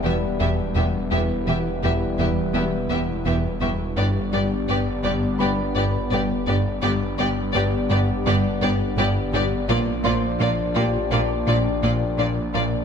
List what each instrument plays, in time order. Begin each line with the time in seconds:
Already playing: detuned saw bass E1, french horn section G3 B3, analog synth pad G3 B3 E4 B4, grand piano A5
0.04 double bass section E1, cello section E2, analog synth bass E2, synth pluck G3, viola section B3, violin section G4 E5
0.40 double bass section E1, cello section E2, analog synth bass E2, synth pluck E3, viola section B3, violin section G4 E5
0.75 double bass section E1, cello section E2, analog synth bass E2, synth pluck G3, viola section B3, violin section G4 E5
1.11 detuned saw bass E1, double bass section E1, analog synth bass E2, cello section E2, synth pluck E3, french horn section G3 B3, analog synth pad G3 B3 E4 B4, viola section B3, violin section G4 E5
1.47 double bass section E1, cello section E2, analog synth bass E3, viola section B3, synth pluck B3, violin section G4 E5
1.83 double bass section E1, analog synth bass E2, cello section E2, viola section B3, violin section G4 E5
2.18 double bass section E1, analog synth bass E2, cello section E2, synth pluck E3, viola section B3, violin section G4 E5
2.54 double bass section E1, cello section E2, analog synth bass E3, viola section B3, violin section G4 E5
2.89 double bass section E1, cello section E2, analog synth bass E2, synth pluck G3, viola section B3, violin section G4 E5
3.25 double bass section E1, analog synth bass E2, cello section E2, synth pluck E3, viola section B3, violin section G4 E5
3.60 double bass section E1, cello section E2, analog synth bass E2, synth pluck G3, viola section B3, violin section G4 E5, grand piano C#6
3.96 detuned saw bass G1, double bass section G1, cello section G2, analog synth bass G2, french horn section G3 B3, synth pluck G3, analog synth pad G3 B3 D4 D5, viola section B3, violin section G4 D5
4.32 double bass section G1, cello section G2, analog synth bass G3, viola section B3, synth pluck D4, violin section G4 D5
4.68 double bass section G1, analog synth bass G2, cello section G2, viola section B3, violin section G4 D5
5.04 double bass section G1, cello section G2, analog synth bass G2, synth pluck G3, viola section B3, violin section G4 D5
5.39 double bass section G1, cello section G2, analog synth bass G3, viola section B3, violin section G4 D5, grand piano B4 B5
5.75 double bass section G1, analog synth bass G2, cello section G2, viola section B3, synth pluck B3, violin section G4 D5
6.11 double bass section G1, analog synth bass G2, cello section G2, synth pluck G3, viola section B3, violin section G4 D5
6.47 double bass section G1, analog synth bass G2, cello section G2, synth pluck B3, viola section B3, violin section G4 D5
6.82 detuned saw bass G1, double bass section G1, analog synth bass G2, cello section G2, french horn section G3 B3, analog synth pad G3 B3 D4 D5, synth pluck G3, viola section B3, violin section G4 D5
7.18 double bass section G1, cello section G2, analog synth bass G3, viola section B3, synth pluck D4, violin section G4 D5
7.53 double bass section G1, cello section G2, analog synth bass G2, viola section B3, violin section G4 D5
7.90 double bass section G1, cello section G2, analog synth bass G2, synth pluck G3, viola section B3, violin section G4 D5
8.26 double bass section G1, cello section G2, analog synth bass G3, viola section B3, violin section G4 D5
8.61 double bass section G1, cello section G2, analog synth bass G2, viola section B3, synth pluck B3, violin section G4 D5
8.97 double bass section G1, cello section G2, analog synth bass G2, synth pluck G3, viola section B3, violin section G4 D5
9.33 double bass section G1, cello section G2, analog synth bass G2, viola section B3, synth pluck B3, violin section G4 D5
9.69 detuned saw bass A#1, double bass section A#1, cello section A#2, analog synth bass A#2, analog synth pad F3 A#3 D4 D5, french horn section F3 D4, synth pluck A#3, viola section A#3, violin section F4 D5
10.04 double bass section A#1, cello section A#2, analog synth bass A#3, viola section A#3, violin section F4 D5, synth pluck F4, grand piano C5 C6
10.40 double bass section A#1, cello section A#2, analog synth bass A#2, viola section A#3, violin section F4 D5
10.75 double bass section A#1, cello section A#2, analog synth bass A#2, viola section A#3, synth pluck A#3, violin section F4 D5, grand piano G4 G5
11.11 double bass section A#1, cello section A#2, analog synth bass A#3, viola section A#3, violin section F4 D5
11.47 double bass section A#1, cello section A#2, analog synth bass A#2, viola section A#3, synth pluck D4, violin section F4 D5
11.82 double bass section A#1, cello section A#2, analog synth bass A#2, viola section A#3, synth pluck A#3, violin section F4 D5
12.18 double bass section A#1, analog synth bass A#2, cello section A#2, viola section A#3, synth pluck D4, violin section F4 D5
12.53 detuned saw bass A#1, double bass section A#1, cello section A#2, analog synth bass A#2, analog synth pad F3 A#3 D4 D5, french horn section F3 D4, viola section A#3, synth pluck A#3, violin section F4 D5